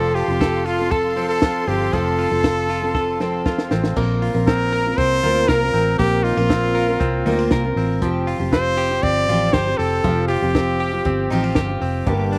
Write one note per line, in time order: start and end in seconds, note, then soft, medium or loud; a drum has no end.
0.00 0.23 F1 loud
0.00 0.29 F3 medium
0.00 1.92 F3 medium
0.00 0.29 C4 medium
0.00 0.28 F4 medium
0.00 0.16 A4 medium
0.00 0.27 A4 medium
0.00 3.92 A4 medium
0.00 3.93 F5 medium
0.00 3.93 C6 medium
0.15 0.65 F4 medium
0.15 0.67 G4 medium
0.15 open hi-hat medium
0.28 1.64 F1 medium
0.28 0.80 C4 soft
0.28 0.79 F4 soft
0.28 0.78 A4 medium
0.41 0.90 A4 medium
0.41 kick loud
0.41 snare loud
0.41 closed hi-hat medium
0.65 0.93 F4 medium
0.65 1.42 F4 medium
0.65 open hi-hat medium
0.79 1.16 C4 soft
0.79 1.17 F4 medium
0.79 1.17 A4 medium
0.91 2.43 A4 medium
0.91 1.28 A4 medium
0.91 kick loud
0.91 closed hi-hat medium
1.17 1.42 F3 medium
1.17 1.67 C4 medium
1.17 1.42 C4 medium
1.17 1.43 F4 medium
1.17 1.44 A4 medium
1.17 open hi-hat medium
1.29 1.69 A4 medium
1.42 1.67 F3 medium
1.42 1.68 C4 medium
1.42 2.18 F4 medium
1.42 1.68 F4 medium
1.42 1.69 A4 medium
1.42 kick loud
1.42 snare loud
1.42 closed hi-hat medium
1.68 1.89 G1 medium
1.68 1.92 F3 medium
1.68 3.20 C4 medium
1.68 1.93 C4 medium
1.68 1.93 F4 medium
1.68 1.95 G4 medium
1.68 1.94 A4 medium
1.68 open hi-hat medium
1.93 2.26 F1 loud
1.93 3.96 F3 medium
1.93 2.31 F3 medium
1.93 2.32 C4 medium
1.93 2.31 F4 medium
1.93 3.46 A4 loud
1.93 2.30 A4 medium
1.93 kick loud
1.93 closed hi-hat medium
2.19 2.69 F4 medium
2.19 open hi-hat medium
2.31 3.67 F1 medium
2.31 2.84 C4 soft
2.31 2.83 F4 medium
2.31 2.81 A4 medium
2.44 2.94 A4 medium
2.44 kick loud
2.44 snare loud
2.44 closed hi-hat medium
2.69 3.46 F4 medium
2.69 open hi-hat medium
2.82 3.20 C4 medium
2.82 3.20 F4 medium
2.82 3.20 A4 medium
2.95 4.01 A4 medium
2.95 kick loud
2.95 snare medium
3.20 3.45 F3 medium
3.20 3.71 C4 medium
3.20 3.45 C4 medium
3.20 3.46 F4 medium
3.20 3.46 A4 medium
3.20 snare medium
3.46 3.69 F3 medium
3.46 3.70 C4 medium
3.46 4.22 F4 medium
3.46 3.70 F4 medium
3.46 3.71 A4 medium
3.46 kick loud
3.46 snare medium
3.58 snare medium
3.70 3.93 A1 medium
3.70 3.96 F3 medium
3.70 3.96 C4 medium
3.70 4.47 C4 medium
3.70 3.96 F4 medium
3.70 3.97 A4 medium
3.70 snare loud
3.84 snare medium
3.96 4.29 A#1 loud
3.96 4.34 A#3 medium
3.96 5.98 A#3 medium
3.96 4.34 C4 medium
3.96 4.33 F4 medium
3.96 4.33 A#4 medium
3.96 kick loud
3.96 crash loud
4.22 5.23 F4 medium
4.22 open hi-hat medium
4.34 4.95 A#1 medium
4.34 4.86 A#3 medium
4.34 4.87 C4 medium
4.34 4.86 F4 medium
4.34 4.84 A#4 medium
4.47 4.98 C4 medium
4.47 4.99 A#4 loud
4.47 kick loud
4.47 snare loud
4.47 closed hi-hat medium
4.72 5.47 A#4 medium
4.72 open hi-hat medium
4.86 5.23 C4 soft
4.86 5.23 F4 medium
4.86 5.23 A#4 medium
4.97 5.19 C2 medium
4.97 5.73 C4 medium
4.97 5.50 C5 loud
4.97 kick loud
4.97 closed hi-hat medium
5.23 5.45 D2 medium
5.23 5.61 A#3 medium
5.23 5.62 C4 medium
5.23 6.24 F4 medium
5.23 5.62 F4 loud
5.23 5.61 A#4 loud
5.23 open hi-hat medium
5.48 5.70 C2 medium
5.48 5.98 A#4 loud
5.48 6.74 A#4 medium
5.48 kick loud
5.48 snare loud
5.48 closed hi-hat medium
5.62 5.99 C4 soft
5.62 6.00 F4 medium
5.62 6.00 A#4 medium
5.74 5.96 A1 loud
5.74 6.49 C4 medium
5.74 open hi-hat medium
5.99 6.32 A#1 loud
5.99 8.02 A#3 medium
5.99 6.38 A#3 medium
5.99 6.37 C4 medium
5.99 6.37 F4 medium
5.99 6.25 G4 loud
5.99 6.36 A#4 medium
5.99 kick loud
5.99 closed hi-hat medium
6.24 6.37 D#4 medium
6.24 7.76 F4 loud
6.24 open hi-hat medium
6.37 6.97 A#1 medium
6.37 6.89 A#3 medium
6.37 6.89 C4 medium
6.37 7.25 F4 medium
6.37 6.88 F4 medium
6.37 6.86 A#4 medium
6.49 7.00 C4 medium
6.49 kick loud
6.49 snare loud
6.49 closed hi-hat medium
6.75 7.51 A#4 medium
6.75 open hi-hat medium
6.88 7.25 C4 medium
6.88 7.26 F4 medium
6.88 7.26 A#4 medium
7.00 7.22 C2 loud
7.00 7.77 C4 medium
7.00 kick loud
7.00 closed hi-hat medium
7.26 7.47 D2 medium
7.26 7.64 A#3 loud
7.26 7.64 C4 loud
7.26 7.39 D#4 medium
7.26 7.64 F4 loud
7.26 7.63 A#4 loud
7.26 open hi-hat medium
7.39 8.07 F4 medium
7.51 7.73 C2 medium
7.51 8.07 A#4 medium
7.51 kick loud
7.51 snare loud
7.51 closed hi-hat medium
7.64 8.02 C4 soft
7.64 8.02 F4 medium
7.64 8.02 A#4 medium
7.76 7.98 A1 loud
7.76 8.52 C4 medium
7.76 open hi-hat medium
8.02 8.34 F1 loud
8.02 10.03 F3 medium
8.02 8.40 F3 medium
8.02 8.39 C4 loud
8.02 8.39 F4 medium
8.02 8.39 G4 loud
8.02 kick loud
8.02 closed hi-hat medium
8.27 9.28 F4 medium
8.27 open hi-hat medium
8.40 9.00 F1 loud
8.40 8.91 F3 medium
8.40 8.91 C4 medium
8.40 8.90 F4 medium
8.40 8.91 G4 medium
8.53 9.02 C4 medium
8.53 9.05 C5 loud
8.53 kick loud
8.53 snare loud
8.53 closed hi-hat medium
8.77 9.53 G4 medium
8.77 open hi-hat medium
8.91 9.28 C4 soft
8.91 9.29 F4 medium
8.91 9.29 G4 medium
9.03 9.25 G1 loud
9.03 9.78 C4 medium
9.03 9.55 D5 loud
9.03 kick loud
9.03 closed hi-hat medium
9.28 9.50 A1 medium
9.28 9.67 F3 medium
9.28 9.67 C4 medium
9.28 10.29 F4 medium
9.28 9.66 F4 medium
9.28 9.65 G4 loud
9.28 open hi-hat medium
9.53 9.75 G1 loud
9.53 10.80 G4 medium
9.53 9.79 C5 loud
9.53 kick loud
9.53 snare loud
9.53 closed hi-hat medium
9.66 10.03 C4 soft
9.66 10.04 F4 medium
9.66 10.05 G4 medium
9.77 10.01 F1 medium
9.77 10.54 C4 medium
9.77 10.27 A4 loud
9.77 open hi-hat medium
10.04 10.37 F1 loud
10.04 10.42 F3 medium
10.04 12.07 F3 medium
10.04 10.42 C4 medium
10.04 10.42 F4 medium
10.04 10.41 G4 medium
10.04 kick loud
10.04 closed hi-hat medium
10.28 11.30 F4 medium
10.28 11.77 G4 medium
10.28 open hi-hat medium
10.42 11.02 F1 medium
10.42 10.94 F3 medium
10.42 10.93 C4 medium
10.42 10.92 F4 medium
10.42 10.92 G4 medium
10.55 11.05 C4 medium
10.55 kick loud
10.55 snare loud
10.55 closed hi-hat medium
10.80 11.56 G4 medium
10.80 open hi-hat medium
10.92 11.31 C4 medium
10.92 11.31 F4 medium
10.92 11.31 G4 medium
11.05 11.27 G1 loud
11.05 11.80 C4 medium
11.05 kick loud
11.05 closed hi-hat medium
11.30 11.53 A1 medium
11.30 11.69 F3 loud
11.30 11.69 C4 loud
11.30 11.44 D#4 medium
11.30 11.68 F4 loud
11.30 11.67 G4 loud
11.30 open hi-hat medium
11.44 12.12 F4 soft
11.55 11.78 G1 loud
11.55 12.38 G4 medium
11.55 kick loud
11.55 snare loud
11.55 closed hi-hat medium
11.69 12.07 C4 soft
11.69 12.07 F4 medium
11.69 12.07 G4 medium
11.81 12.03 F1 medium
11.81 12.12 C4 medium
11.81 open hi-hat medium
12.06 12.38 G1 loud
12.06 12.38 G2 medium
12.06 12.38 D3 medium
12.06 12.38 G3 medium
12.06 12.38 A#3 medium
12.06 12.38 D4 medium
12.06 12.38 G4 loud
12.06 12.38 A#4 medium
12.06 12.38 G5 medium
12.06 12.38 D6 medium
12.06 kick loud
12.06 closed hi-hat medium
12.32 12.38 D4 medium
12.32 open hi-hat medium